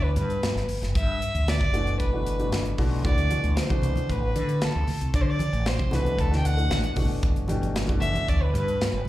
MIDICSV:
0, 0, Header, 1, 6, 480
1, 0, Start_track
1, 0, Tempo, 523560
1, 871, Time_signature, 4, 2, 24, 8
1, 8330, End_track
2, 0, Start_track
2, 0, Title_t, "Violin"
2, 0, Program_c, 0, 40
2, 31, Note_on_c, 0, 71, 73
2, 143, Note_off_c, 0, 71, 0
2, 148, Note_on_c, 0, 71, 77
2, 596, Note_off_c, 0, 71, 0
2, 876, Note_on_c, 0, 76, 89
2, 1370, Note_on_c, 0, 74, 87
2, 1384, Note_off_c, 0, 76, 0
2, 1837, Note_off_c, 0, 74, 0
2, 1842, Note_on_c, 0, 71, 68
2, 2519, Note_off_c, 0, 71, 0
2, 2800, Note_on_c, 0, 74, 83
2, 3241, Note_off_c, 0, 74, 0
2, 3286, Note_on_c, 0, 72, 74
2, 3775, Note_on_c, 0, 71, 70
2, 3789, Note_off_c, 0, 72, 0
2, 4258, Note_on_c, 0, 69, 74
2, 4271, Note_off_c, 0, 71, 0
2, 4603, Note_off_c, 0, 69, 0
2, 4723, Note_on_c, 0, 74, 83
2, 4776, Note_on_c, 0, 72, 75
2, 4790, Note_off_c, 0, 74, 0
2, 4860, Note_on_c, 0, 74, 84
2, 4873, Note_off_c, 0, 72, 0
2, 5208, Note_on_c, 0, 72, 78
2, 5222, Note_off_c, 0, 74, 0
2, 5447, Note_on_c, 0, 71, 86
2, 5460, Note_off_c, 0, 72, 0
2, 5685, Note_on_c, 0, 69, 83
2, 5699, Note_off_c, 0, 71, 0
2, 5834, Note_off_c, 0, 69, 0
2, 5840, Note_on_c, 0, 79, 70
2, 5918, Note_on_c, 0, 78, 97
2, 5932, Note_off_c, 0, 79, 0
2, 6393, Note_off_c, 0, 78, 0
2, 7346, Note_on_c, 0, 76, 94
2, 7600, Note_on_c, 0, 74, 85
2, 7614, Note_off_c, 0, 76, 0
2, 7720, Note_on_c, 0, 71, 83
2, 7733, Note_off_c, 0, 74, 0
2, 7834, Note_off_c, 0, 71, 0
2, 7845, Note_on_c, 0, 71, 77
2, 8284, Note_off_c, 0, 71, 0
2, 8330, End_track
3, 0, Start_track
3, 0, Title_t, "Grand piano"
3, 0, Program_c, 1, 0
3, 0, Note_on_c, 1, 47, 67
3, 0, Note_on_c, 1, 52, 65
3, 0, Note_on_c, 1, 57, 58
3, 0, Note_on_c, 1, 62, 63
3, 0, Note_on_c, 1, 64, 73
3, 450, Note_off_c, 1, 52, 0
3, 451, Note_off_c, 1, 47, 0
3, 451, Note_off_c, 1, 57, 0
3, 451, Note_off_c, 1, 62, 0
3, 452, Note_off_c, 1, 64, 0
3, 1586, Note_on_c, 1, 52, 66
3, 1587, Note_on_c, 1, 47, 69
3, 1589, Note_on_c, 1, 57, 62
3, 1590, Note_on_c, 1, 62, 61
3, 1592, Note_on_c, 1, 66, 73
3, 1926, Note_off_c, 1, 47, 0
3, 1926, Note_off_c, 1, 52, 0
3, 1927, Note_off_c, 1, 57, 0
3, 1928, Note_off_c, 1, 62, 0
3, 1929, Note_off_c, 1, 66, 0
3, 1949, Note_on_c, 1, 47, 60
3, 1952, Note_on_c, 1, 52, 59
3, 1953, Note_on_c, 1, 57, 54
3, 1954, Note_on_c, 1, 62, 57
3, 1955, Note_on_c, 1, 66, 69
3, 2174, Note_off_c, 1, 47, 0
3, 2176, Note_off_c, 1, 52, 0
3, 2177, Note_off_c, 1, 57, 0
3, 2177, Note_off_c, 1, 62, 0
3, 2177, Note_off_c, 1, 66, 0
3, 2190, Note_on_c, 1, 52, 55
3, 2191, Note_on_c, 1, 62, 57
3, 2192, Note_on_c, 1, 47, 56
3, 2192, Note_on_c, 1, 57, 53
3, 2192, Note_on_c, 1, 66, 66
3, 2527, Note_off_c, 1, 52, 0
3, 2527, Note_off_c, 1, 62, 0
3, 2528, Note_off_c, 1, 47, 0
3, 2528, Note_off_c, 1, 57, 0
3, 2528, Note_off_c, 1, 66, 0
3, 2550, Note_on_c, 1, 52, 68
3, 2552, Note_on_c, 1, 47, 82
3, 2553, Note_on_c, 1, 62, 74
3, 2553, Note_on_c, 1, 66, 82
3, 2555, Note_on_c, 1, 57, 65
3, 2774, Note_off_c, 1, 52, 0
3, 2774, Note_off_c, 1, 57, 0
3, 2776, Note_off_c, 1, 47, 0
3, 2776, Note_off_c, 1, 62, 0
3, 2776, Note_off_c, 1, 66, 0
3, 2787, Note_on_c, 1, 57, 68
3, 2790, Note_on_c, 1, 62, 71
3, 2791, Note_on_c, 1, 47, 70
3, 2791, Note_on_c, 1, 52, 66
3, 2791, Note_on_c, 1, 66, 85
3, 3013, Note_off_c, 1, 57, 0
3, 3014, Note_off_c, 1, 52, 0
3, 3015, Note_off_c, 1, 47, 0
3, 3015, Note_off_c, 1, 62, 0
3, 3015, Note_off_c, 1, 66, 0
3, 3028, Note_on_c, 1, 52, 59
3, 3029, Note_on_c, 1, 66, 65
3, 3030, Note_on_c, 1, 57, 51
3, 3030, Note_on_c, 1, 62, 53
3, 3031, Note_on_c, 1, 47, 60
3, 3366, Note_off_c, 1, 52, 0
3, 3367, Note_off_c, 1, 57, 0
3, 3367, Note_off_c, 1, 62, 0
3, 3367, Note_off_c, 1, 66, 0
3, 3368, Note_off_c, 1, 47, 0
3, 3389, Note_on_c, 1, 47, 70
3, 3391, Note_on_c, 1, 57, 54
3, 3391, Note_on_c, 1, 66, 76
3, 3392, Note_on_c, 1, 62, 59
3, 3393, Note_on_c, 1, 52, 60
3, 4289, Note_off_c, 1, 47, 0
3, 4289, Note_off_c, 1, 66, 0
3, 4290, Note_off_c, 1, 52, 0
3, 4290, Note_off_c, 1, 57, 0
3, 4290, Note_off_c, 1, 62, 0
3, 5418, Note_on_c, 1, 47, 72
3, 5418, Note_on_c, 1, 52, 70
3, 5422, Note_on_c, 1, 57, 65
3, 5422, Note_on_c, 1, 66, 77
3, 5423, Note_on_c, 1, 62, 60
3, 5761, Note_off_c, 1, 47, 0
3, 5761, Note_off_c, 1, 52, 0
3, 5763, Note_off_c, 1, 57, 0
3, 5763, Note_off_c, 1, 62, 0
3, 5763, Note_off_c, 1, 66, 0
3, 5782, Note_on_c, 1, 52, 54
3, 5783, Note_on_c, 1, 62, 56
3, 5784, Note_on_c, 1, 57, 58
3, 5784, Note_on_c, 1, 66, 67
3, 5785, Note_on_c, 1, 47, 61
3, 6004, Note_off_c, 1, 47, 0
3, 6005, Note_off_c, 1, 52, 0
3, 6005, Note_off_c, 1, 57, 0
3, 6007, Note_off_c, 1, 62, 0
3, 6011, Note_off_c, 1, 66, 0
3, 6017, Note_on_c, 1, 47, 52
3, 6018, Note_on_c, 1, 52, 53
3, 6018, Note_on_c, 1, 57, 51
3, 6020, Note_on_c, 1, 69, 64
3, 6021, Note_on_c, 1, 62, 52
3, 6360, Note_off_c, 1, 47, 0
3, 6361, Note_off_c, 1, 52, 0
3, 6361, Note_off_c, 1, 57, 0
3, 6361, Note_off_c, 1, 69, 0
3, 6362, Note_off_c, 1, 62, 0
3, 6382, Note_on_c, 1, 47, 68
3, 6386, Note_on_c, 1, 57, 63
3, 6387, Note_on_c, 1, 52, 58
3, 6387, Note_on_c, 1, 62, 65
3, 6387, Note_on_c, 1, 66, 78
3, 6836, Note_off_c, 1, 47, 0
3, 6838, Note_off_c, 1, 52, 0
3, 6838, Note_off_c, 1, 57, 0
3, 6838, Note_off_c, 1, 62, 0
3, 6838, Note_off_c, 1, 66, 0
3, 6861, Note_on_c, 1, 47, 79
3, 6862, Note_on_c, 1, 62, 68
3, 6863, Note_on_c, 1, 52, 64
3, 6863, Note_on_c, 1, 57, 66
3, 6863, Note_on_c, 1, 67, 80
3, 7203, Note_off_c, 1, 47, 0
3, 7203, Note_off_c, 1, 62, 0
3, 7204, Note_off_c, 1, 52, 0
3, 7204, Note_off_c, 1, 57, 0
3, 7204, Note_off_c, 1, 67, 0
3, 7225, Note_on_c, 1, 47, 70
3, 7226, Note_on_c, 1, 52, 61
3, 7226, Note_on_c, 1, 57, 65
3, 7227, Note_on_c, 1, 66, 74
3, 7229, Note_on_c, 1, 62, 65
3, 8128, Note_off_c, 1, 47, 0
3, 8128, Note_off_c, 1, 57, 0
3, 8129, Note_off_c, 1, 52, 0
3, 8129, Note_off_c, 1, 66, 0
3, 8130, Note_off_c, 1, 62, 0
3, 8330, End_track
4, 0, Start_track
4, 0, Title_t, "Fretless electric bass"
4, 0, Program_c, 2, 35
4, 0, Note_on_c, 2, 38, 73
4, 126, Note_off_c, 2, 38, 0
4, 150, Note_on_c, 2, 43, 86
4, 367, Note_off_c, 2, 43, 0
4, 507, Note_on_c, 2, 31, 87
4, 617, Note_off_c, 2, 31, 0
4, 748, Note_on_c, 2, 30, 81
4, 857, Note_off_c, 2, 30, 0
4, 876, Note_on_c, 2, 43, 81
4, 1090, Note_off_c, 2, 43, 0
4, 1232, Note_on_c, 2, 38, 80
4, 1448, Note_off_c, 2, 38, 0
4, 1477, Note_on_c, 2, 30, 72
4, 1831, Note_off_c, 2, 30, 0
4, 1831, Note_on_c, 2, 31, 73
4, 2274, Note_off_c, 2, 31, 0
4, 2314, Note_on_c, 2, 31, 84
4, 2420, Note_off_c, 2, 31, 0
4, 2553, Note_on_c, 2, 35, 75
4, 2796, Note_off_c, 2, 35, 0
4, 2796, Note_on_c, 2, 38, 81
4, 3009, Note_off_c, 2, 38, 0
4, 3153, Note_on_c, 2, 38, 81
4, 3259, Note_off_c, 2, 38, 0
4, 3396, Note_on_c, 2, 36, 66
4, 3609, Note_off_c, 2, 36, 0
4, 3755, Note_on_c, 2, 33, 77
4, 3969, Note_off_c, 2, 33, 0
4, 3994, Note_on_c, 2, 50, 90
4, 4208, Note_off_c, 2, 50, 0
4, 4359, Note_on_c, 2, 38, 88
4, 4462, Note_off_c, 2, 38, 0
4, 4595, Note_on_c, 2, 36, 79
4, 4700, Note_off_c, 2, 36, 0
4, 4709, Note_on_c, 2, 50, 87
4, 4925, Note_off_c, 2, 50, 0
4, 5068, Note_on_c, 2, 33, 90
4, 5285, Note_off_c, 2, 33, 0
4, 5314, Note_on_c, 2, 36, 74
4, 5673, Note_off_c, 2, 36, 0
4, 5673, Note_on_c, 2, 38, 75
4, 6114, Note_off_c, 2, 38, 0
4, 6145, Note_on_c, 2, 33, 84
4, 6255, Note_off_c, 2, 33, 0
4, 6389, Note_on_c, 2, 31, 84
4, 6497, Note_off_c, 2, 31, 0
4, 6630, Note_on_c, 2, 31, 81
4, 6846, Note_off_c, 2, 31, 0
4, 6982, Note_on_c, 2, 31, 78
4, 7093, Note_off_c, 2, 31, 0
4, 7234, Note_on_c, 2, 30, 72
4, 7449, Note_off_c, 2, 30, 0
4, 7597, Note_on_c, 2, 38, 76
4, 7810, Note_off_c, 2, 38, 0
4, 7828, Note_on_c, 2, 43, 101
4, 8046, Note_off_c, 2, 43, 0
4, 8190, Note_on_c, 2, 31, 94
4, 8298, Note_off_c, 2, 31, 0
4, 8330, End_track
5, 0, Start_track
5, 0, Title_t, "Muted fretless electric bass strokes"
5, 389, Note_on_c, 9, 29, 34
5, 481, Note_off_c, 9, 29, 0
5, 633, Note_on_c, 9, 29, 37
5, 724, Note_off_c, 9, 29, 0
5, 4234, Note_on_c, 9, 29, 33
5, 4325, Note_off_c, 9, 29, 0
5, 4477, Note_on_c, 9, 29, 35
5, 4569, Note_off_c, 9, 29, 0
5, 8069, Note_on_c, 9, 29, 37
5, 8161, Note_off_c, 9, 29, 0
5, 8330, End_track
6, 0, Start_track
6, 0, Title_t, "Drums"
6, 148, Note_on_c, 9, 42, 58
6, 240, Note_off_c, 9, 42, 0
6, 274, Note_on_c, 9, 42, 33
6, 366, Note_off_c, 9, 42, 0
6, 395, Note_on_c, 9, 42, 65
6, 398, Note_on_c, 9, 38, 97
6, 487, Note_off_c, 9, 42, 0
6, 489, Note_off_c, 9, 38, 0
6, 518, Note_on_c, 9, 38, 30
6, 610, Note_off_c, 9, 38, 0
6, 629, Note_on_c, 9, 46, 65
6, 721, Note_off_c, 9, 46, 0
6, 759, Note_on_c, 9, 42, 36
6, 762, Note_on_c, 9, 38, 31
6, 851, Note_off_c, 9, 42, 0
6, 854, Note_off_c, 9, 38, 0
6, 874, Note_on_c, 9, 36, 98
6, 876, Note_on_c, 9, 42, 69
6, 966, Note_off_c, 9, 36, 0
6, 968, Note_off_c, 9, 42, 0
6, 1119, Note_on_c, 9, 42, 54
6, 1211, Note_off_c, 9, 42, 0
6, 1238, Note_on_c, 9, 42, 33
6, 1330, Note_off_c, 9, 42, 0
6, 1357, Note_on_c, 9, 42, 71
6, 1360, Note_on_c, 9, 38, 107
6, 1449, Note_off_c, 9, 42, 0
6, 1452, Note_off_c, 9, 38, 0
6, 1474, Note_on_c, 9, 36, 67
6, 1476, Note_on_c, 9, 42, 34
6, 1566, Note_off_c, 9, 36, 0
6, 1568, Note_off_c, 9, 42, 0
6, 1593, Note_on_c, 9, 42, 53
6, 1685, Note_off_c, 9, 42, 0
6, 1716, Note_on_c, 9, 42, 34
6, 1807, Note_off_c, 9, 42, 0
6, 1831, Note_on_c, 9, 42, 66
6, 1832, Note_on_c, 9, 36, 64
6, 1923, Note_off_c, 9, 42, 0
6, 1924, Note_off_c, 9, 36, 0
6, 2076, Note_on_c, 9, 42, 62
6, 2168, Note_off_c, 9, 42, 0
6, 2196, Note_on_c, 9, 42, 33
6, 2288, Note_off_c, 9, 42, 0
6, 2314, Note_on_c, 9, 42, 75
6, 2317, Note_on_c, 9, 38, 92
6, 2406, Note_off_c, 9, 42, 0
6, 2408, Note_off_c, 9, 38, 0
6, 2433, Note_on_c, 9, 42, 35
6, 2525, Note_off_c, 9, 42, 0
6, 2550, Note_on_c, 9, 46, 75
6, 2553, Note_on_c, 9, 36, 71
6, 2642, Note_off_c, 9, 46, 0
6, 2644, Note_off_c, 9, 36, 0
6, 2793, Note_on_c, 9, 36, 93
6, 2793, Note_on_c, 9, 42, 81
6, 2885, Note_off_c, 9, 36, 0
6, 2885, Note_off_c, 9, 42, 0
6, 2914, Note_on_c, 9, 42, 38
6, 3006, Note_off_c, 9, 42, 0
6, 3030, Note_on_c, 9, 42, 63
6, 3031, Note_on_c, 9, 63, 55
6, 3122, Note_off_c, 9, 42, 0
6, 3123, Note_off_c, 9, 63, 0
6, 3151, Note_on_c, 9, 42, 36
6, 3243, Note_off_c, 9, 42, 0
6, 3271, Note_on_c, 9, 42, 86
6, 3274, Note_on_c, 9, 38, 97
6, 3363, Note_off_c, 9, 42, 0
6, 3366, Note_off_c, 9, 38, 0
6, 3389, Note_on_c, 9, 63, 58
6, 3394, Note_on_c, 9, 42, 36
6, 3395, Note_on_c, 9, 36, 72
6, 3481, Note_off_c, 9, 63, 0
6, 3486, Note_off_c, 9, 42, 0
6, 3487, Note_off_c, 9, 36, 0
6, 3500, Note_on_c, 9, 64, 58
6, 3514, Note_on_c, 9, 42, 58
6, 3592, Note_off_c, 9, 64, 0
6, 3606, Note_off_c, 9, 42, 0
6, 3626, Note_on_c, 9, 63, 61
6, 3639, Note_on_c, 9, 42, 35
6, 3718, Note_off_c, 9, 63, 0
6, 3731, Note_off_c, 9, 42, 0
6, 3754, Note_on_c, 9, 36, 65
6, 3757, Note_on_c, 9, 42, 65
6, 3846, Note_off_c, 9, 36, 0
6, 3848, Note_off_c, 9, 42, 0
6, 3994, Note_on_c, 9, 42, 54
6, 4086, Note_off_c, 9, 42, 0
6, 4115, Note_on_c, 9, 42, 31
6, 4206, Note_off_c, 9, 42, 0
6, 4231, Note_on_c, 9, 42, 70
6, 4234, Note_on_c, 9, 38, 108
6, 4323, Note_off_c, 9, 42, 0
6, 4326, Note_off_c, 9, 38, 0
6, 4467, Note_on_c, 9, 64, 61
6, 4471, Note_on_c, 9, 46, 71
6, 4559, Note_off_c, 9, 64, 0
6, 4563, Note_off_c, 9, 46, 0
6, 4592, Note_on_c, 9, 42, 34
6, 4684, Note_off_c, 9, 42, 0
6, 4710, Note_on_c, 9, 42, 78
6, 4711, Note_on_c, 9, 36, 93
6, 4802, Note_off_c, 9, 36, 0
6, 4802, Note_off_c, 9, 42, 0
6, 4944, Note_on_c, 9, 63, 71
6, 4952, Note_on_c, 9, 42, 58
6, 5036, Note_off_c, 9, 63, 0
6, 5044, Note_off_c, 9, 42, 0
6, 5073, Note_on_c, 9, 42, 32
6, 5164, Note_off_c, 9, 42, 0
6, 5189, Note_on_c, 9, 42, 72
6, 5192, Note_on_c, 9, 38, 99
6, 5280, Note_off_c, 9, 42, 0
6, 5283, Note_off_c, 9, 38, 0
6, 5305, Note_on_c, 9, 63, 75
6, 5312, Note_on_c, 9, 36, 66
6, 5314, Note_on_c, 9, 42, 32
6, 5397, Note_off_c, 9, 63, 0
6, 5404, Note_off_c, 9, 36, 0
6, 5406, Note_off_c, 9, 42, 0
6, 5420, Note_on_c, 9, 64, 68
6, 5438, Note_on_c, 9, 42, 53
6, 5441, Note_on_c, 9, 38, 31
6, 5511, Note_off_c, 9, 64, 0
6, 5530, Note_off_c, 9, 42, 0
6, 5533, Note_off_c, 9, 38, 0
6, 5544, Note_on_c, 9, 63, 65
6, 5558, Note_on_c, 9, 42, 31
6, 5636, Note_off_c, 9, 63, 0
6, 5650, Note_off_c, 9, 42, 0
6, 5671, Note_on_c, 9, 36, 59
6, 5673, Note_on_c, 9, 42, 65
6, 5762, Note_off_c, 9, 36, 0
6, 5765, Note_off_c, 9, 42, 0
6, 5801, Note_on_c, 9, 38, 29
6, 5893, Note_off_c, 9, 38, 0
6, 5915, Note_on_c, 9, 42, 61
6, 6007, Note_off_c, 9, 42, 0
6, 6037, Note_on_c, 9, 42, 31
6, 6129, Note_off_c, 9, 42, 0
6, 6150, Note_on_c, 9, 42, 76
6, 6153, Note_on_c, 9, 38, 95
6, 6241, Note_off_c, 9, 42, 0
6, 6244, Note_off_c, 9, 38, 0
6, 6265, Note_on_c, 9, 42, 38
6, 6357, Note_off_c, 9, 42, 0
6, 6382, Note_on_c, 9, 46, 63
6, 6382, Note_on_c, 9, 64, 64
6, 6387, Note_on_c, 9, 36, 74
6, 6474, Note_off_c, 9, 46, 0
6, 6474, Note_off_c, 9, 64, 0
6, 6479, Note_off_c, 9, 36, 0
6, 6627, Note_on_c, 9, 42, 76
6, 6629, Note_on_c, 9, 36, 108
6, 6719, Note_off_c, 9, 42, 0
6, 6720, Note_off_c, 9, 36, 0
6, 6748, Note_on_c, 9, 42, 37
6, 6840, Note_off_c, 9, 42, 0
6, 6856, Note_on_c, 9, 63, 72
6, 6869, Note_on_c, 9, 42, 61
6, 6948, Note_off_c, 9, 63, 0
6, 6961, Note_off_c, 9, 42, 0
6, 6995, Note_on_c, 9, 42, 36
6, 7087, Note_off_c, 9, 42, 0
6, 7112, Note_on_c, 9, 42, 85
6, 7115, Note_on_c, 9, 38, 104
6, 7204, Note_off_c, 9, 42, 0
6, 7207, Note_off_c, 9, 38, 0
6, 7220, Note_on_c, 9, 63, 72
6, 7234, Note_on_c, 9, 36, 72
6, 7236, Note_on_c, 9, 42, 37
6, 7312, Note_off_c, 9, 63, 0
6, 7326, Note_off_c, 9, 36, 0
6, 7327, Note_off_c, 9, 42, 0
6, 7341, Note_on_c, 9, 64, 62
6, 7353, Note_on_c, 9, 42, 59
6, 7432, Note_off_c, 9, 64, 0
6, 7444, Note_off_c, 9, 42, 0
6, 7459, Note_on_c, 9, 63, 70
6, 7477, Note_on_c, 9, 42, 39
6, 7550, Note_off_c, 9, 63, 0
6, 7568, Note_off_c, 9, 42, 0
6, 7595, Note_on_c, 9, 36, 67
6, 7597, Note_on_c, 9, 42, 66
6, 7687, Note_off_c, 9, 36, 0
6, 7689, Note_off_c, 9, 42, 0
6, 7839, Note_on_c, 9, 42, 62
6, 7930, Note_off_c, 9, 42, 0
6, 7960, Note_on_c, 9, 42, 37
6, 8052, Note_off_c, 9, 42, 0
6, 8080, Note_on_c, 9, 42, 81
6, 8083, Note_on_c, 9, 38, 102
6, 8172, Note_off_c, 9, 42, 0
6, 8175, Note_off_c, 9, 38, 0
6, 8299, Note_on_c, 9, 64, 65
6, 8330, Note_off_c, 9, 64, 0
6, 8330, End_track
0, 0, End_of_file